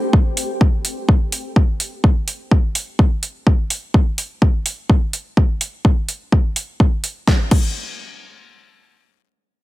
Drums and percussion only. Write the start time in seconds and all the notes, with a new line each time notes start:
0.13 kick
0.37 open hi-hat
0.61 kick
0.85 open hi-hat
1.09 kick
1.32 open hi-hat
1.56 kick
1.80 open hi-hat
2.04 kick
2.28 open hi-hat
2.51 kick
2.75 open hi-hat
2.99 kick
3.23 open hi-hat
3.47 kick
3.70 open hi-hat
3.94 kick
4.18 open hi-hat
4.42 kick
4.66 open hi-hat
4.89 kick
5.13 open hi-hat
5.37 kick
5.61 open hi-hat
5.85 kick
6.08 open hi-hat
6.32 kick
6.56 open hi-hat
6.80 kick
7.04 open hi-hat
7.27 kick, snare
7.51 kick, crash